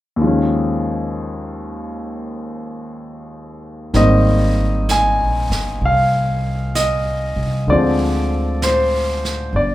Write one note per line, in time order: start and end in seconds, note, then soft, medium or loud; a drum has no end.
0.16 3.92 D#2 soft
0.16 3.92 D#3 soft
0.21 3.94 F3 soft
0.21 3.95 G#3 soft
0.26 3.97 C#4 soft
3.94 5.15 G#1 medium
3.94 7.69 D#3 soft
3.94 7.70 G3 soft
3.94 7.70 A#3 soft
3.94 7.70 C4 soft
3.94 4.92 D#5 medium
3.94 brush sweep soft
3.94 snare soft
4.89 5.87 G#5 medium
4.89 brush sweep soft
4.89 snare soft
4.89 hi-hat pedal soft
5.19 5.49 A#1 soft
5.50 5.79 G1 soft
5.50 snare soft
5.81 7.33 C2 medium
5.81 brush sweep soft
5.85 6.80 F5 medium
6.75 7.65 D#5 medium
6.75 brush sweep soft
6.75 snare soft
6.75 hi-hat pedal soft
7.36 7.66 C2 soft
7.67 9.51 D2 medium
7.67 9.55 D3 soft
7.67 9.56 F3 soft
7.67 9.57 G#3 soft
7.67 8.59 D5 medium
7.67 brush sweep soft
7.72 9.57 C4 soft
8.62 9.52 C5 medium
8.62 brush sweep soft
8.62 snare soft
8.62 hi-hat pedal soft
9.25 snare soft
9.53 9.75 G1 medium
9.53 9.75 D5 medium
9.53 brush sweep soft